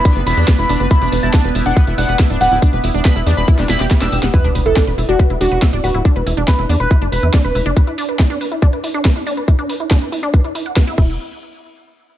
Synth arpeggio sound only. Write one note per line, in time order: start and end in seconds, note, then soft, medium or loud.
0.05 0.09 D4 loud
0.16 0.20 B4 medium
0.27 0.31 E4 medium
0.37 0.41 D4 loud
0.48 0.52 B4 medium
0.59 0.63 E4 medium
0.69 0.73 D4 loud
0.80 0.84 B4 medium
0.91 0.95 E4 medium
1.02 1.06 D4 loud
1.12 1.16 B4 medium
1.23 1.27 E4 medium
1.34 1.38 D4 loud
1.44 1.48 B4 medium
1.55 1.59 E4 medium
1.66 1.70 D4 loud
1.77 1.81 B4 medium
1.87 1.91 E4 medium
1.98 2.02 D4 loud
2.09 2.13 B4 medium
2.19 2.23 E4 medium
2.30 2.34 D4 loud
2.41 2.45 B4 medium
2.52 2.56 E4 medium
2.62 2.66 D4 loud
2.73 2.77 B4 medium
2.84 2.88 E4 medium
2.94 2.98 D4 loud
3.05 3.09 B4 medium
3.16 3.20 E4 medium
3.27 3.31 D4 loud
3.37 3.41 B4 medium
3.48 3.52 E4 medium
3.59 3.63 D4 loud
3.69 3.72 E4 loud
3.80 3.84 G4 loud
3.91 3.95 E4 medium
4.02 4.06 D4 loud
4.12 4.18 G4 medium
4.23 4.27 F#5 medium
4.34 4.38 E4 medium
4.44 4.48 D4 loud
4.55 4.59 B4 medium
4.66 4.70 E4 medium
4.77 4.81 D4 loud
4.87 4.91 B4 medium
4.98 5.02 E4 medium
5.09 5.13 D4 loud
5.19 5.23 B4 medium
5.30 5.34 E4 medium
5.41 5.45 D4 loud
5.52 5.56 B4 medium
5.62 5.66 E4 medium
5.73 5.77 D4 loud
5.84 5.88 B4 medium
5.94 5.98 E4 medium
6.05 6.09 D4 loud
6.16 6.20 B4 medium
6.27 6.31 E4 medium
6.37 6.41 D4 loud
6.48 6.52 B4 medium
6.59 6.63 E4 medium
6.69 6.73 D4 loud
6.80 6.84 B4 medium
6.91 6.95 E4 medium
7.02 7.06 D4 loud
7.12 7.16 B4 medium
7.23 7.27 E4 medium
7.34 7.38 D4 loud
7.44 7.48 B4 medium
7.55 7.59 E4 medium
7.66 7.70 D4 loud
7.77 7.81 B4 medium
7.87 7.91 E4 medium
7.98 8.02 D4 loud
8.09 8.13 B4 medium
8.19 8.23 E4 medium
8.30 8.34 D4 loud
8.41 8.45 B4 medium
8.52 8.56 E4 medium
8.62 8.66 D4 loud
8.73 8.77 B4 medium
8.84 8.88 E4 medium
8.94 8.98 D4 loud
9.05 9.09 B4 medium
9.16 9.20 E4 medium
9.27 9.31 D4 loud
9.37 9.41 B4 medium
9.48 9.52 E4 medium
9.59 9.63 D4 loud
9.69 9.73 B4 medium
9.80 9.84 E4 medium
9.91 9.95 D4 loud
10.02 10.06 B4 medium
10.12 10.16 E4 medium
10.23 10.27 D4 loud
10.34 10.38 B4 medium
10.44 10.48 E4 medium
10.55 10.59 E4 medium
10.66 10.72 F#5 medium
10.77 10.79 B4 medium
10.87 10.91 E4 loud
10.98 11.18 E4 loud